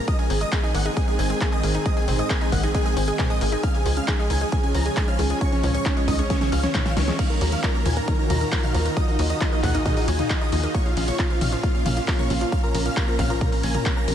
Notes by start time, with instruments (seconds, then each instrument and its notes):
0.08 analog synth pad D#3 G#3 C4, synth arpeggio sound G#3, supersaw synth D#5 D#6, kick, closed hi-hat
0.19 synth arpeggio sound G#3, supersaw synth G#4 G#5, closed hi-hat
0.30 analog synth bass G#1, synth arpeggio sound C4, supersaw synth G#4 G#5, open hi-hat
0.41 synth arpeggio sound G#3, supersaw synth D#5 D#6, closed hi-hat
0.52 synth arpeggio sound A#3, supersaw synth G#4 G#5, kick, clap, closed hi-hat
0.63 synth arpeggio sound D#4, supersaw synth G#4 G#5
0.74 analog synth bass G#1, synth arpeggio sound A#3, supersaw synth F#5 F#6, open hi-hat
0.86 synth arpeggio sound D#4, supersaw synth G#4 G#5, closed hi-hat
0.97 synth arpeggio sound G#3, supersaw synth G#4 G#5, kick, closed hi-hat
1.08 synth arpeggio sound G#3, supersaw synth G#4 G#5, closed hi-hat
1.19 analog synth bass G#1, synth arpeggio sound C4, supersaw synth G#5 G#6, open hi-hat
1.30 synth arpeggio sound G#3, supersaw synth G#4 G#5, closed hi-hat
1.41 synth arpeggio sound A#3, supersaw synth G#4 G#5, kick, clap, closed hi-hat
1.52 synth arpeggio sound G#4, supersaw synth D#5 D#6, closed hi-hat
1.63 analog synth bass G#1, synth arpeggio sound A#3, supersaw synth G#4 G#5, open hi-hat
1.74 synth arpeggio sound D#4, supersaw synth G#4 G#5, closed hi-hat
1.86 synth arpeggio sound G#3, supersaw synth D#5 D#6, kick, closed hi-hat
1.97 synth arpeggio sound G#3, supersaw synth G#4 G#5, closed hi-hat
2.08 analog synth bass G#1, synth arpeggio sound C4, supersaw synth G#4 G#5, open hi-hat, mid tom
2.19 synth arpeggio sound G#3, supersaw synth D#5 D#6, closed hi-hat
2.30 synth arpeggio sound A#3, supersaw synth G#4 G#5, kick, clap, closed hi-hat
2.41 synth arpeggio sound D#4, supersaw synth G#4 G#5, closed hi-hat
2.52 analog synth bass G#1, synth arpeggio sound A#3, supersaw synth F#5 F#6, kick, open hi-hat
2.63 synth arpeggio sound D#4, supersaw synth G#4 G#5, closed hi-hat
2.74 synth arpeggio sound G#3, supersaw synth G#4 G#5, kick, closed hi-hat
2.86 synth arpeggio sound G#3, supersaw synth G#4 G#5, closed hi-hat
2.97 analog synth bass G#1, synth arpeggio sound C4, supersaw synth G#5 G#6, open hi-hat
3.08 synth arpeggio sound G#3, supersaw synth G#4 G#5, closed hi-hat
3.19 synth arpeggio sound A#3, supersaw synth G#4 G#5, kick, clap, closed hi-hat, mid tom
3.30 synth arpeggio sound G#4, supersaw synth D#5 D#6, closed hi-hat
3.41 analog synth bass G#1, synth arpeggio sound A#3, supersaw synth G#4 G#5, open hi-hat
3.52 synth arpeggio sound D#4, supersaw synth G#4 G#5, closed hi-hat
3.63 synth arpeggio sound C#3, analog synth pad F3 C#4, supersaw synth F5 F6, kick, closed hi-hat
3.74 synth arpeggio sound C#3, supersaw synth G#4 G#5, closed hi-hat
3.86 analog synth bass C#2, synth arpeggio sound F3, supersaw synth G#4 G#5, open hi-hat
3.97 synth arpeggio sound C#3, supersaw synth F5 F6, closed hi-hat
4.08 synth arpeggio sound D#3, supersaw synth G#4 G#5, kick, clap, closed hi-hat
4.19 synth arpeggio sound G#3, supersaw synth G#4 G#5
4.30 analog synth bass C#2, synth arpeggio sound D#3, supersaw synth G#5 G#6, open hi-hat
4.41 synth arpeggio sound G#3, supersaw synth G#4 G#5, closed hi-hat
4.52 synth arpeggio sound C#3, supersaw synth G#4 G#5, kick, closed hi-hat
4.63 synth arpeggio sound C#3, supersaw synth G#4 G#5, closed hi-hat
4.75 analog synth bass C#2, synth arpeggio sound F3, supersaw synth A#5 A#6, open hi-hat
4.86 synth arpeggio sound C#3, supersaw synth G#4 G#5, closed hi-hat
4.97 synth arpeggio sound D#3, supersaw synth G#4 G#5, kick, clap, closed hi-hat
5.08 synth arpeggio sound C#4, supersaw synth F5 F6, closed hi-hat
5.19 analog synth bass C#2, synth arpeggio sound D#3, supersaw synth G#4 G#5, open hi-hat
5.30 synth arpeggio sound G#3, supersaw synth G#4 G#5, closed hi-hat
5.41 synth arpeggio sound C#3, supersaw synth C#5 C#6, kick, closed hi-hat
5.52 synth arpeggio sound C#3, supersaw synth C#4 C#5, closed hi-hat
5.63 analog synth bass C#2, synth arpeggio sound F3, supersaw synth C#4 C#5, open hi-hat, mid tom
5.74 synth arpeggio sound C#3, supersaw synth C#5 C#6, closed hi-hat
5.85 synth arpeggio sound D#3, supersaw synth C#4 C#5, kick, clap, closed hi-hat
5.97 synth arpeggio sound G#3, supersaw synth C#4 C#5, closed hi-hat
6.08 analog synth bass C#2, synth arpeggio sound D#3, supersaw synth D#5 D#6, kick, open hi-hat
6.19 synth arpeggio sound G#3, supersaw synth C#4 C#5, closed hi-hat
6.30 synth arpeggio sound C#3, supersaw synth C#4 C#5, kick, snare, closed hi-hat
6.41 synth arpeggio sound C#3, supersaw synth C#4 C#5, snare, closed hi-hat
6.52 analog synth bass C#2, synth arpeggio sound F3, supersaw synth F5 F6, open hi-hat
6.63 synth arpeggio sound C#3, supersaw synth C#4 C#5, snare, closed hi-hat
6.74 synth arpeggio sound D#3, supersaw synth C#4 C#5, kick, snare, clap, closed hi-hat, mid tom
6.86 synth arpeggio sound C#4, supersaw synth F5 F6, snare, closed hi-hat
6.97 analog synth bass C#2, synth arpeggio sound D#3, supersaw synth C#4 C#5, snare, open hi-hat
7.08 synth arpeggio sound G#3, supersaw synth C#4 C#5, snare, closed hi-hat
7.19 synth arpeggio sound D#3, analog synth pad D#3 D#4 F4 F#4 A#4, supersaw synth F5 F6, kick, closed hi-hat, crash
7.30 synth arpeggio sound D#3, supersaw synth A#4 A#5
7.41 analog synth bass D#2, synth arpeggio sound F#3, supersaw synth A#4 A#5, open hi-hat, ride
7.52 synth arpeggio sound D#3, supersaw synth F5 F6, closed hi-hat
7.63 synth arpeggio sound F3, supersaw synth A#4 A#5, kick, clap, closed hi-hat
7.74 synth arpeggio sound A#3, supersaw synth A#4 A#5
7.86 analog synth bass D#2, synth arpeggio sound F3, supersaw synth G#5 G#6, open hi-hat, mid tom, ride
7.97 synth arpeggio sound A#3, supersaw synth A#4 A#5, closed hi-hat
8.08 synth arpeggio sound D#3, supersaw synth A#4 A#5, kick, closed hi-hat
8.19 synth arpeggio sound D#3, supersaw synth A#4 A#5
8.30 analog synth bass D#2, synth arpeggio sound F#3, supersaw synth A#5 A#6, open hi-hat, mid tom, ride
8.41 synth arpeggio sound D#3, supersaw synth A#4 A#5, closed hi-hat
8.52 synth arpeggio sound F3, supersaw synth A#4 A#5, kick, clap, open hi-hat
8.63 synth arpeggio sound D#4, supersaw synth F5 F6, mid tom
8.74 analog synth bass D#2, synth arpeggio sound F3, supersaw synth A#4 A#5, open hi-hat, ride
8.86 synth arpeggio sound A#3, supersaw synth A#4 A#5, closed hi-hat
8.97 synth arpeggio sound D#3, analog synth pad G#4, supersaw synth D#5 D#6, kick, closed hi-hat
9.08 synth arpeggio sound D#3, supersaw synth D#4 D#5
9.19 analog synth bass D#2, synth arpeggio sound F#3, supersaw synth D#4 D#5, open hi-hat, ride
9.30 synth arpeggio sound D#3, supersaw synth D#5 D#6, closed hi-hat
9.41 synth arpeggio sound F3, supersaw synth D#4 D#5, kick, clap, closed hi-hat
9.52 synth arpeggio sound A#3, supersaw synth D#4 D#5
9.63 analog synth bass D#2, synth arpeggio sound F3, supersaw synth F#5 F#6, kick, clap, open hi-hat, mid tom, ride
9.74 synth arpeggio sound A#3, supersaw synth D#4 D#5, closed hi-hat
9.86 synth arpeggio sound D#3, supersaw synth D#4 D#5, kick, closed hi-hat, mid tom
9.97 synth arpeggio sound D#3, supersaw synth D#4 D#5, open hi-hat
10.08 analog synth bass D#2, synth arpeggio sound F#3, supersaw synth G#5 G#6, open hi-hat, ride
10.19 synth arpeggio sound D#3, supersaw synth D#4 D#5, closed hi-hat, mid tom
10.30 synth arpeggio sound F3, supersaw synth D#4 D#5, kick, clap, closed hi-hat
10.41 synth arpeggio sound D#4, supersaw synth D#5 D#6
10.52 analog synth bass D#2, synth arpeggio sound F3, supersaw synth D#4 D#5, open hi-hat, ride
10.63 synth arpeggio sound A#3, supersaw synth D#4 D#5, closed hi-hat
10.74 synth arpeggio sound A#2, analog synth pad A#3 C#4, supersaw synth C#5 C#6, kick, closed hi-hat
10.86 synth arpeggio sound A#2, supersaw synth F4 F5
10.97 analog synth bass A#1, synth arpeggio sound C#3, supersaw synth F4 F5, open hi-hat, ride
11.08 synth arpeggio sound A#2, supersaw synth C#5 C#6, closed hi-hat
11.19 synth arpeggio sound C3, supersaw synth F4 F5, kick, clap, closed hi-hat
11.30 synth arpeggio sound F3, supersaw synth F4 F5
11.41 analog synth bass A#1, synth arpeggio sound C3, supersaw synth F5 F6, open hi-hat, mid tom, ride
11.52 synth arpeggio sound F3, supersaw synth F4 F5, closed hi-hat
11.63 synth arpeggio sound A#2, supersaw synth F4 F5, kick, closed hi-hat
11.74 synth arpeggio sound A#2, supersaw synth F4 F5
11.86 analog synth bass A#1, synth arpeggio sound C#3, supersaw synth F5 F6, open hi-hat, mid tom, ride
11.97 synth arpeggio sound A#2, supersaw synth F4 F5, closed hi-hat
12.08 synth arpeggio sound C3, supersaw synth F4, kick, clap, open hi-hat
12.19 synth arpeggio sound A#3, supersaw synth C#5 C#6, mid tom
12.30 analog synth bass A#1, synth arpeggio sound C3, supersaw synth F4 F5, open hi-hat, ride
12.41 synth arpeggio sound F3, supersaw synth F4 F5, closed hi-hat
12.52 synth arpeggio sound A#2, supersaw synth F5 F6, kick, closed hi-hat
12.63 synth arpeggio sound A#2, supersaw synth A#4 A#5
12.75 analog synth bass A#1, synth arpeggio sound C#3, supersaw synth A#4 A#5, open hi-hat, ride
12.86 synth arpeggio sound A#2, supersaw synth F5 F6, closed hi-hat
12.97 synth arpeggio sound C3, supersaw synth A#4 A#5, kick, clap, closed hi-hat
13.08 synth arpeggio sound F3, supersaw synth A#4 A#5
13.19 analog synth bass A#1, synth arpeggio sound C3, supersaw synth F5 F6, kick, clap, open hi-hat, mid tom, ride
13.30 synth arpeggio sound F3, supersaw synth A#4 A#5, closed hi-hat
13.41 synth arpeggio sound A#2, supersaw synth A#4 A#5, kick, closed hi-hat, mid tom
13.52 synth arpeggio sound A#2, supersaw synth A#4 A#5, open hi-hat
13.63 analog synth bass A#1, synth arpeggio sound C#3, supersaw synth G#5 G#6, open hi-hat, ride
13.74 synth arpeggio sound A#2, supersaw synth A#4 A#5, closed hi-hat, mid tom
13.86 synth arpeggio sound C3, supersaw synth A#4 A#5, kick, clap, closed hi-hat
13.97 synth arpeggio sound A#3, supersaw synth A#5 A#6
14.08 analog synth bass A#1, synth arpeggio sound C3, supersaw synth A#4 A#5, open hi-hat, ride